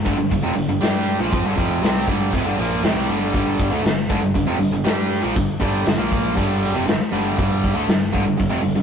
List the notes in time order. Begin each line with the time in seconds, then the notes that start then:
0.06 G1 G2 D3, kick, closed hi-hat
0.18 G1 G2 D3
0.30 G1 G2 D3, kick, closed hi-hat
0.42 F1 F2 C3
0.55 G1 G2 D3, closed hi-hat
0.69 G1 G2 D3
0.81 G2 G3 D4 G4, snare, closed hi-hat
1.08 closed hi-hat
1.19 A#1 A#2 F3
1.32 F2 F3 C4, kick, closed hi-hat
1.43 G1 G2 D3
1.56 F1 F2 C3 F3, kick, closed hi-hat
1.81 C2 C3 G3 C4, snare, closed hi-hat
2.06 G1 G2 D3 G3, kick, closed hi-hat
2.31 F1 F2 C3, kick, closed hi-hat
2.43 G1 G2 D3
2.56 A#1 A#2 F3 A#3, closed hi-hat
2.82 F1 F2 C3, snare, closed hi-hat
2.94 C2 C3 G3
3.07 G1 G2 D3 G3, closed hi-hat
3.32 G1 G2 D3 G3, kick, closed hi-hat
3.60 kick, closed hi-hat
3.70 D2 D3 A3
3.83 G1 G2 D3, snare, closed hi-hat
4.10 G1 G2 D3, kick, closed hi-hat
4.21 G1 G2 D3
4.34 G1 G2 D3, kick, closed hi-hat
4.47 F1 F2 C3
4.59 G1 G2 D3, closed hi-hat
4.72 G1 G2 D3
4.84 G2 G3 D4 G4, snare, closed hi-hat
5.12 closed hi-hat
5.23 A#1 A#2 F3
5.35 G1 G2 D3, kick, closed hi-hat
5.60 G1 G2 D3 G3, kick, closed hi-hat
5.85 G1 G2 D3, snare, closed hi-hat
5.97 A#1 A#2 F3 A#3
6.12 kick, closed hi-hat
6.37 G1 G2 D3 G3, kick, closed hi-hat
6.62 closed hi-hat
6.74 F1 F2 C3
6.87 G1 G2 D3, snare, closed hi-hat
6.99 muted picked electric bass stroke, muted overdriven electric guitar stroke, muted distorted electric guitar stroke
7.12 G1 G2 D3 G3, closed hi-hat
7.38 G1 G2 D3 G3, kick, closed hi-hat
7.64 kick, closed hi-hat
7.75 D2 D3 A3
7.88 G1 G2 D3, snare, closed hi-hat
8.13 G1 G2 D3, kick, closed hi-hat
8.25 G1 G2 D3
8.39 G1 G2 D3, kick, closed hi-hat
8.50 F1 F2 C3
8.63 G1 G2 D3, closed hi-hat
8.76 G1 G2 D3